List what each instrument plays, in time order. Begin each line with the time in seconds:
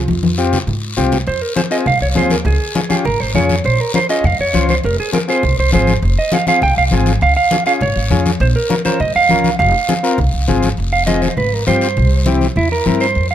Already playing: clean electric guitar F4
0.08 upright bass F2, high conga, long guiro
0.23 high conga
0.38 transistor combo organ C4 F4 G4, short guiro
0.53 low conga, short guiro
0.67 upright bass G#2, low conga, long guiro
0.97 upright bass C2, transistor combo organ C4 F4 G4, low conga, short guiro
1.12 low conga, short guiro
1.27 upright bass F2, clean electric guitar C5, high conga, long guiro
1.42 clean electric guitar A#4
1.56 transistor combo organ C4 F4 G#4, clean electric guitar C5, high conga, short guiro
1.71 transistor combo organ C4 F4 G#4, clean electric guitar D#5, short guiro
1.86 upright bass C2, clean electric guitar F5, low conga, long guiro
2.01 upright bass C2, clean electric guitar C#5, high conga
2.15 upright bass D#2, transistor combo organ C4 F4 G#4, clean electric guitar C5, high conga, short guiro
2.30 clean electric guitar A#4, high conga, short guiro
2.45 upright bass C#2, clean electric guitar G#4, high conga, low conga, long guiro
2.75 transistor combo organ C#4 F4 G#4, high conga, short guiro
2.89 transistor combo organ C#4 F4 G4, clean electric guitar G#4, high conga, short guiro
3.05 upright bass G#1, clean electric guitar A#4, low conga, long guiro
3.20 upright bass G#1, clean electric guitar C5, high conga
3.34 upright bass F2, transistor combo organ C#4 F4 G#4, clean electric guitar C#5, high conga, low conga, short guiro
3.49 high conga, short guiro
3.64 upright bass A#1, clean electric guitar C5, high conga, long guiro
3.81 clean electric guitar A#4
3.94 transistor combo organ C#4 F4 A#4, clean electric guitar C5, high conga, short guiro
4.09 transistor combo organ C#4 F4 G#4, clean electric guitar D#5, short guiro
4.24 upright bass F2, clean electric guitar F5, low conga, long guiro
4.39 upright bass F2, clean electric guitar C#5, high conga
4.53 upright bass C#2, transistor combo organ C#4 F4 C5, high conga, short guiro
4.69 clean electric guitar C5, high conga, short guiro
4.83 upright bass F1, clean electric guitar A#4, high conga, long guiro
5.00 clean electric guitar G#4
5.12 transistor combo organ C4 F4 G#4, clean electric guitar A#4, high conga, short guiro
5.28 transistor combo organ C4 F4 G#4, clean electric guitar C5, short guiro
5.43 upright bass C2, low conga, long guiro
5.58 upright bass C2, clean electric guitar C5, high conga
5.72 upright bass G#1, transistor combo organ C4 F4 G#4, clean electric guitar C5, high conga, short guiro
5.87 high conga, short guiro
6.02 upright bass F1, high conga, long guiro
6.19 clean electric guitar D#5
6.32 transistor combo organ C4 F4 G#4, clean electric guitar F5, high conga, short guiro
6.47 transistor combo organ C4 F4 G#4, clean electric guitar F5, high conga, short guiro
6.62 upright bass C2, clean electric guitar G5, low conga, long guiro
6.77 upright bass C2, clean electric guitar F5, high conga
6.91 upright bass G#1, transistor combo organ C4 F4 G#4, clean electric guitar G#5, high conga, short guiro
7.06 high conga, short guiro
7.21 upright bass C#2, clean electric guitar F5, high conga, long guiro
7.37 clean electric guitar F5
7.51 transistor combo organ C#4 F4 G#4, high conga, short guiro
7.66 transistor combo organ C#4 F4 G#4, clean electric guitar F5, short guiro
7.81 upright bass G#1, clean electric guitar C#5, low conga, long guiro
7.96 upright bass G#1, high conga
8.10 upright bass F2, transistor combo organ C#4 F4 G#4, high conga, low conga, short guiro
8.26 high conga, short guiro
8.40 upright bass A#1, clean electric guitar C5, high conga, long guiro
8.56 clean electric guitar A#4
8.70 transistor combo organ C#4 F4 A#4, high conga, short guiro
8.85 transistor combo organ C#4 F4 A#4, clean electric guitar C5, high conga, short guiro
9.00 upright bass F2, clean electric guitar D#5, low conga, long guiro
9.15 upright bass F2, clean electric guitar F5, high conga
9.29 upright bass C#2, transistor combo organ C#4 F4 A#4, high conga, short guiro
9.44 high conga, short guiro
9.59 upright bass F1, clean electric guitar F5, high conga, low conga, long guiro
9.88 transistor combo organ C4 F4 G#4, high conga, short guiro
10.03 transistor combo organ C4 F4 A#4, short guiro
10.18 upright bass C2, low conga, long guiro
10.33 upright bass C2, high conga
10.48 upright bass G#1, transistor combo organ C4 F4 G#4, high conga, low conga, short guiro
10.63 high conga, short guiro
10.77 upright bass F1, high conga, long guiro
10.93 clean electric guitar F5
11.07 transistor combo organ C4 F4 G#4, clean electric guitar D#5, high conga, short guiro
11.22 clean electric guitar C5, high conga, short guiro
11.37 upright bass G#1, clean electric guitar B4, low conga, long guiro
11.52 clean electric guitar A#4, high conga
11.67 upright bass G2, transistor combo organ C4 F4 G4, clean electric guitar C5, high conga, short guiro
11.81 short guiro
11.97 upright bass C2, high conga, low conga, long guiro
12.26 transistor combo organ C4 E4 G4, high conga, short guiro
12.41 high conga, short guiro
12.56 upright bass E2, clean electric guitar E4, low conga, long guiro
12.71 clean electric guitar A#4, high conga
12.86 upright bass G2, transistor combo organ C4 E4 A#4, high conga, short guiro
13.00 clean electric guitar C5, short guiro
13.15 upright bass F2, high conga, long guiro
13.31 clean electric guitar F5